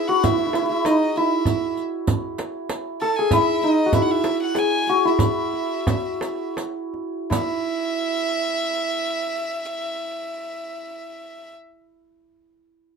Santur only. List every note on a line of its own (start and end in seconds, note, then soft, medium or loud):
0.00 0.23 E4 medium
0.00 2.52 G#4 medium
0.00 0.21 B4 medium
0.09 3.33 F#4 medium
0.23 0.31 E4 medium
0.31 0.37 E4 medium
0.38 0.46 E4 medium
0.46 0.53 E4 medium
0.54 0.62 E4 medium
0.62 0.69 E4 medium
0.69 0.90 E4 medium
0.84 1.23 D#4 medium
1.17 3.32 E4 medium
3.02 3.25 A4 loud
3.19 4.54 G#4 medium
3.33 3.69 E4 loud
3.63 4.00 D#4 medium
3.86 4.89 F#4 medium
3.94 5.05 E4 medium
4.54 7.58 G#4 medium
4.89 8.14 F#4 medium
5.05 7.29 E4 medium
7.30 11.49 E4 medium